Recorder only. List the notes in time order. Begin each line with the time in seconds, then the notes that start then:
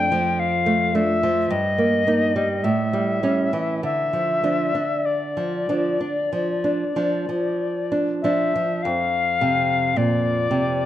Already playing: G5
0.40 F5
0.95 E5
1.51 D#5
2.64 E5
3.84 E5
5.05 D5
8.22 E5
8.83 F5
9.97 D5